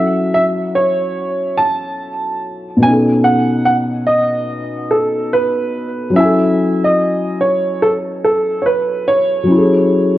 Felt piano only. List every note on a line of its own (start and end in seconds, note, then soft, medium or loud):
0.00 2.76 F#3 medium
0.00 2.78 C#4 medium
0.00 2.80 E4 medium
0.00 2.81 F#4 medium
0.00 2.83 A4 medium
2.77 6.10 B2 medium
2.77 6.11 B3 medium
2.84 6.12 C#4 medium
2.84 6.15 D#4 medium
2.91 6.16 A4 medium
6.10 9.42 F#3 medium
6.10 9.44 C#4 medium
6.16 9.46 E4 medium
6.16 9.48 G#5 medium
6.23 9.49 A4 medium
9.43 10.18 F#3 medium
9.43 10.18 C#4 medium
9.50 10.18 E4 medium
9.50 10.18 G#4 medium
9.57 10.18 A4 medium